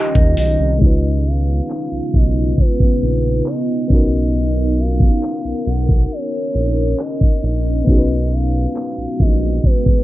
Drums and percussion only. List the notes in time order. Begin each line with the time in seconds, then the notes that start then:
0.15 kick
0.37 open hi-hat
0.81 kick
1.25 closed hi-hat
1.69 clap, closed hi-hat
2.13 kick, closed hi-hat
2.58 kick, closed hi-hat
2.80 kick
3.02 closed hi-hat
3.24 closed hi-hat
3.46 clap, closed hi-hat
3.61 closed hi-hat
3.75 closed hi-hat
3.90 kick, closed hi-hat
4.34 closed hi-hat
4.78 closed hi-hat
5.00 kick
5.22 clap, closed hi-hat
5.66 closed hi-hat
5.89 kick
6.11 closed hi-hat
6.55 closed hi-hat
6.77 closed hi-hat
6.99 clap
7.14 closed hi-hat
7.21 kick
7.29 closed hi-hat
7.43 open hi-hat
7.87 kick, closed hi-hat
8.31 closed hi-hat
8.75 clap, closed hi-hat
9.20 kick, closed hi-hat
9.64 kick, closed hi-hat
9.86 kick